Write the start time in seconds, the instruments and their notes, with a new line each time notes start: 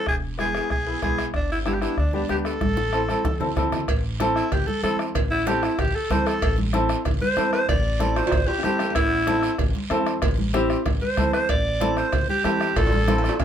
0.07 upright bass E1, alto saxophone G#4, bombo low, bombo rim, long guiro
0.38 upright piano B3 E4 G#4, alto saxophone G#4, bombo rim, high conga, short guiro
0.54 upright piano B3 E4 G#4, bombo rim, short guiro
0.70 upright bass B1, alto saxophone G#4, bombo low, bombo rim, long guiro
0.86 upright piano B3 E4 G#4
1.02 upright bass B1, upright piano B3 E4 G#4, alto saxophone G#4, bombo low, bombo rim, high conga, short guiro
1.18 bombo rim, short guiro
1.34 upright bass G1, alto saxophone D4, bombo low, bombo rim, long guiro
1.52 alto saxophone E4
1.65 upright piano B3 D4 G4, alto saxophone E4, bombo rim, high conga, short guiro
1.74 alto saxophone G4
1.81 upright piano B3 D4 G4, alto saxophone E4, bombo rim, short guiro
1.97 upright bass D2, alto saxophone D4, bombo low, bombo rim, long guiro
2.13 upright piano B3 D4 G4, alto saxophone D4, high conga
2.29 upright bass D2, upright piano B3 D4 G4, alto saxophone G4, bombo rim, high conga, short guiro
2.45 alto saxophone A4, bombo rim, short guiro
2.61 upright bass A1, bombo low, bombo rim, high conga, long guiro
2.77 high conga
2.93 upright piano C4 E4 A4, bombo rim, short guiro
3.09 upright piano C4 E4 A4, bombo rim, high conga, short guiro
3.25 upright bass E2, bombo low, bombo rim, low conga, long guiro
3.40 upright piano C4 E4 A4, low conga
3.56 upright bass E2, upright piano C4 E4 A4, bombo low, bombo rim, low conga, short guiro
3.72 bombo rim, low conga, short guiro
3.88 upright bass A1, bombo low, bombo rim, cowbell, high conga, long guiro
4.20 upright piano C4 E4 A4, bombo rim, high conga, short guiro
4.36 alto saxophone E4, bombo rim, short guiro
4.52 upright bass A1, alto saxophone G4, bombo low, bombo rim, cowbell, high conga, low conga, long guiro
4.67 alto saxophone A4, high conga
4.83 upright bass E2, upright piano C4 E4 A4, alto saxophone A4, bombo rim, high conga, short guiro
4.99 bombo rim, short guiro
5.15 upright bass A1, bombo low, bombo rim, cowbell, high conga, low conga, long guiro
5.31 alto saxophone E4
5.47 upright piano C4 E4 A4, alto saxophone G4, bombo rim, high conga, short guiro
5.63 alto saxophone E4, bombo rim, short guiro
5.79 upright bass A1, alto saxophone G4, bombo low, bombo rim, cowbell, high conga, low conga, long guiro
5.95 alto saxophone A4
6.10 upright bass E2, upright piano C4 E4 A4, alto saxophone C5, bombo low, bombo rim, high conga, low conga, short guiro
6.26 alto saxophone A4, bombo rim, short guiro
6.42 upright bass A1, bombo low, bombo rim, cowbell, high conga, long guiro
6.58 high conga
6.73 upright piano C4 E4 A4, bombo rim, high conga, short guiro
6.89 bombo rim, short guiro
7.05 upright bass A1, bombo low, bombo rim, cowbell, high conga, low conga, long guiro
7.21 alto saxophone C5, high conga
7.37 upright bass E2, upright piano C4 E4 A4, bombo rim, high conga, short guiro
7.53 alto saxophone C5, bombo rim, short guiro
7.69 upright bass A1, alto saxophone D5, bombo low, bombo rim, cowbell, high conga, low conga, long guiro
7.99 upright piano C4 E4 A4, bombo rim, high conga, short guiro
8.16 alto saxophone C5, bombo rim, high timbale, short guiro
8.27 high timbale
8.31 upright bass A1, bombo low, bombo rim, cowbell, high conga, low conga, long guiro
8.47 alto saxophone G4, high timbale
8.59 low timbale
8.63 upright bass E2, upright piano C4 E4 A4, alto saxophone G4, bombo rim, high conga, short guiro
8.79 bombo rim, low timbale, short guiro
8.90 low timbale
8.95 upright bass A1, alto saxophone E4, bombo low, bombo rim, cowbell, high conga, long guiro
9.27 upright piano C4 E4 A4, bombo rim, high conga, short guiro
9.43 bombo rim, short guiro
9.58 upright bass A1, bombo low, bombo rim, cowbell, high conga, low conga, long guiro
9.75 high conga
9.90 upright bass E2, upright piano C4 E4 A4, bombo rim, high conga, low timbale, short guiro
10.06 bombo rim, short guiro
10.22 upright bass A1, bombo low, bombo rim, cowbell, high conga, low conga, long guiro
10.38 high conga
10.54 upright piano C4 E4 G4, bombo rim, high conga, short guiro
10.70 bombo rim, short guiro
10.86 upright bass A1, bombo low, bombo rim, cowbell, high conga, low conga, long guiro
11.02 alto saxophone C5, high conga
11.17 upright bass E2, upright piano C4 E4 A4, bombo low, bombo rim, high conga, low conga, short guiro
11.33 alto saxophone C5, bombo rim, short guiro
11.49 upright bass A1, alto saxophone D5, bombo low, bombo rim, cowbell, high conga, long guiro
11.80 upright piano C4 E4 A4, bombo rim, high conga, short guiro
11.97 alto saxophone C5, bombo rim, short guiro
12.12 upright bass A1, bombo low, bombo rim, cowbell, high conga, low conga, long guiro
12.29 alto saxophone G4, high conga
12.44 upright bass E2, upright piano C4 E4 A4, alto saxophone G4, bombo rim, high conga, low timbale, short guiro
12.60 bombo rim, short guiro
12.76 upright bass A1, alto saxophone A4, bombo low, bombo rim, cowbell, high conga, high timbale, long guiro
12.87 high timbale
12.92 high conga
13.07 upright piano C4 E4 A4, bombo rim, high conga, low timbale, short guiro
13.18 low timbale
13.24 bombo rim, short guiro
13.29 high timbale
13.40 upright bass A1, bombo low, bombo rim, cowbell, high conga, low conga, low timbale, long guiro